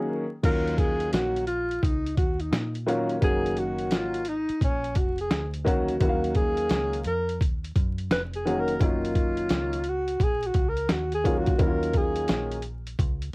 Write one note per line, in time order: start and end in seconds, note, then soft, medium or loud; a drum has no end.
0.00 0.23 D#3 medium
0.00 0.23 F#3 medium
0.00 0.23 A#3 medium
0.00 0.24 C#4 medium
0.00 0.24 G#4 medium
0.43 1.10 D#2 medium
0.43 1.39 D#3 medium
0.43 1.39 F#3 medium
0.43 1.40 A#3 medium
0.43 1.40 C#4 medium
0.43 1.40 F4 medium
0.43 0.80 A#4 loud
0.43 kick loud
0.43 closed hi-hat medium
0.43 crash medium
0.68 closed hi-hat soft
0.78 1.13 G#4 loud
0.78 kick medium
0.78 closed hi-hat medium
1.00 closed hi-hat soft
1.13 1.79 A#1 medium
1.13 1.45 F#4 medium
1.13 snare loud
1.13 closed hi-hat loud
1.36 closed hi-hat medium
1.47 1.84 F4 medium
1.47 closed hi-hat medium
1.71 closed hi-hat medium
1.83 2.16 C#2 medium
1.83 2.17 D#4 medium
1.83 kick medium
1.83 closed hi-hat medium
2.06 closed hi-hat soft
2.17 2.51 D#2 medium
2.17 2.42 F#4 medium
2.17 kick medium
2.17 closed hi-hat medium
2.40 2.75 D#4 medium
2.40 closed hi-hat soft
2.52 3.18 A#2 medium
2.52 snare loud
2.52 closed hi-hat medium
2.75 closed hi-hat medium
2.86 3.14 D#3 medium
2.86 3.14 F#3 medium
2.86 3.14 A#3 medium
2.86 3.14 C#4 medium
2.86 3.15 F4 medium
2.86 closed hi-hat medium
3.09 closed hi-hat soft
3.21 3.92 F#1 loud
3.21 4.18 D#3 medium
3.21 4.18 F#3 medium
3.21 4.18 A#3 medium
3.21 4.18 C#4 medium
3.21 4.19 F#4 medium
3.21 3.61 G#4 loud
3.21 kick loud
3.21 closed hi-hat medium
3.46 closed hi-hat soft
3.57 3.96 F#4 loud
3.57 closed hi-hat medium
3.78 closed hi-hat medium
3.91 4.47 G#1 loud
3.91 4.30 F4 loud
3.91 snare loud
3.91 closed hi-hat loud
4.14 closed hi-hat medium
4.25 4.63 D#4 medium
4.25 closed hi-hat medium
4.49 muted fingered electric bass stroke soft
4.49 closed hi-hat medium
4.61 4.95 A#1 medium
4.61 5.00 C#4 medium
4.61 kick medium
4.61 closed hi-hat medium
4.84 closed hi-hat soft
4.95 5.29 F1 medium
4.95 5.20 F#4 medium
4.95 kick medium
4.95 closed hi-hat medium
5.18 5.53 G#4 medium
5.18 closed hi-hat soft
5.31 5.98 D2 medium
5.31 snare loud
5.31 closed hi-hat medium
5.54 closed hi-hat medium
5.65 5.92 D#3 medium
5.65 5.92 F#3 medium
5.65 5.93 A#3 medium
5.65 5.93 C#4 medium
5.65 5.93 F#4 loud
5.65 kick medium
5.65 closed hi-hat medium
5.88 closed hi-hat soft
6.00 6.68 D#2 loud
6.00 6.97 D#3 medium
6.00 6.97 F#3 medium
6.00 6.98 A#3 medium
6.00 6.98 C#4 medium
6.00 6.11 E4 medium
6.00 6.34 F#4 medium
6.00 kick loud
6.00 closed hi-hat medium
6.09 7.01 F5 medium
6.24 closed hi-hat soft
6.35 7.02 G#4 loud
6.35 kick medium
6.35 closed hi-hat medium
6.57 closed hi-hat medium
6.70 7.04 C#2 medium
6.70 snare loud
6.70 closed hi-hat loud
6.93 closed hi-hat medium
7.04 7.41 F2 medium
7.04 7.39 A#4 medium
7.04 closed hi-hat medium
7.29 closed hi-hat medium
7.41 7.74 D#2 medium
7.41 kick medium
7.41 closed hi-hat medium
7.64 closed hi-hat soft
7.75 8.09 F#2 medium
7.75 kick medium
7.75 closed hi-hat medium
7.98 closed hi-hat soft
8.11 8.77 F1 medium
8.11 8.22 B4 loud
8.11 snare loud
8.11 closed hi-hat medium
8.33 8.61 G#4 medium
8.33 closed hi-hat medium
8.45 8.72 D#3 medium
8.45 8.72 F#3 medium
8.45 8.73 A#3 medium
8.45 8.73 C#4 medium
8.45 8.73 F#4 medium
8.45 closed hi-hat medium
8.59 8.81 A#4 loud
8.68 closed hi-hat soft
8.80 9.47 F#1 loud
8.80 9.76 D#3 medium
8.80 9.77 F#3 medium
8.80 9.77 A#3 medium
8.80 9.77 C#4 medium
8.80 9.77 D#4 medium
8.80 9.90 F4 loud
8.80 kick loud
8.80 closed hi-hat medium
9.05 closed hi-hat soft
9.15 kick medium
9.15 closed hi-hat medium
9.37 closed hi-hat medium
9.49 10.16 C#2 loud
9.49 snare loud
9.49 closed hi-hat loud
9.73 closed hi-hat medium
9.84 closed hi-hat medium
9.89 10.25 F#4 medium
10.08 closed hi-hat medium
10.20 10.53 A#1 medium
10.20 10.48 G#4 medium
10.20 kick medium
10.20 closed hi-hat medium
10.43 10.71 F#4 medium
10.43 closed hi-hat soft
10.54 10.88 C#2 medium
10.54 kick medium
10.54 closed hi-hat medium
10.69 10.94 A#4 medium
10.77 closed hi-hat soft
10.89 11.56 D#2 medium
10.89 11.14 F#4 medium
10.89 snare loud
10.89 closed hi-hat medium
11.12 11.40 G#4 medium
11.12 closed hi-hat medium
11.24 11.51 D#3 medium
11.24 11.51 F#3 medium
11.24 11.52 A#3 medium
11.24 11.52 C#4 medium
11.24 11.52 F4 medium
11.24 kick medium
11.24 closed hi-hat medium
11.38 11.64 F#4 medium
11.46 kick medium
11.46 closed hi-hat soft
11.58 12.26 D#2 loud
11.58 12.55 D#3 medium
11.58 12.55 F#3 medium
11.58 12.55 A#3 medium
11.58 12.56 C#4 medium
11.58 11.68 E4 medium
11.58 kick loud
11.58 closed hi-hat medium
11.63 11.99 A#4 loud
11.67 12.59 F4 medium
11.83 closed hi-hat soft
11.94 kick medium
11.94 closed hi-hat medium
11.98 12.66 G#4 medium
12.16 closed hi-hat medium
12.28 12.96 A#1 medium
12.28 snare loud
12.28 closed hi-hat loud
12.52 closed hi-hat medium
12.62 closed hi-hat medium
12.87 closed hi-hat medium
12.99 13.32 C#2 medium
12.99 kick loud
12.99 closed hi-hat medium
13.22 closed hi-hat soft